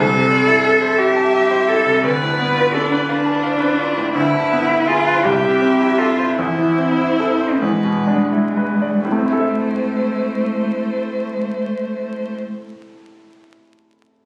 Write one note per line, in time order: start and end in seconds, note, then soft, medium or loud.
0.00 2.00 C2 medium
0.00 1.00 A4 loud
0.00 0.33 C5 medium
0.14 0.40 C3 soft
0.31 0.58 C4 soft
0.31 0.66 D5 medium
0.47 0.75 E4 medium
0.64 0.92 A4 medium
0.64 2.03 E5 medium
0.82 1.09 C5 medium
0.98 1.70 G4 medium
0.98 1.27 E5 medium
1.16 1.44 A5 medium
1.33 1.61 E5 medium
1.51 1.79 C5 medium
1.68 1.97 E4 medium
1.68 2.04 A4 medium
1.86 2.04 C3 soft
2.04 4.11 D2 medium
2.04 2.76 B4 medium
2.04 3.11 D5 medium
2.22 2.51 A2 soft
2.39 2.68 B3 medium
2.57 2.85 F4 soft
2.74 3.07 D4 medium
2.74 3.02 A4 soft
2.92 3.20 B4 soft
3.08 4.12 D4 medium
3.08 3.46 B4 medium
3.08 3.37 F5 soft
3.26 3.54 A5 soft
3.43 3.79 C5 medium
3.43 3.72 F5 medium
3.60 3.90 B4 soft
3.79 4.08 F4 soft
3.79 4.15 B4 medium
3.97 4.15 A2 soft
4.15 5.21 D2 medium
4.15 4.89 E4 medium
4.15 5.26 B4 medium
4.34 4.62 D3 soft
4.52 4.80 B3 soft
4.70 4.99 E4 soft
4.87 5.26 F4 medium
4.87 5.17 G#4 soft
5.07 5.24 B4 soft
5.24 6.34 C2 medium
5.24 6.00 G4 medium
5.24 6.39 E5 medium
5.44 5.73 C3 soft
5.62 5.91 C4 soft
5.80 6.10 E4 soft
5.98 6.35 F4 medium
5.98 6.29 A4 soft
6.19 6.38 C5 soft
6.36 7.58 E2 soft
6.36 7.62 E4 medium
6.36 7.63 C5 medium
6.59 6.90 E3 soft
6.78 7.10 C4 soft
6.98 7.31 E4 soft
7.20 7.53 A4 soft
7.41 7.62 C5 soft
7.60 9.02 E2 soft
7.60 9.04 G#3 medium
7.60 8.31 B4 soft
7.84 8.22 B2 soft
8.07 8.46 D4 soft
8.32 8.72 E4 soft
8.57 8.96 B4 soft
8.82 9.05 D5 soft
9.05 12.36 A2 soft
9.05 12.36 A3 medium
9.05 12.38 C5 soft
9.12 12.43 A3 soft
9.19 12.50 C4 soft
9.26 12.57 E4 soft
9.33 12.64 A4 soft
9.40 12.71 E5 soft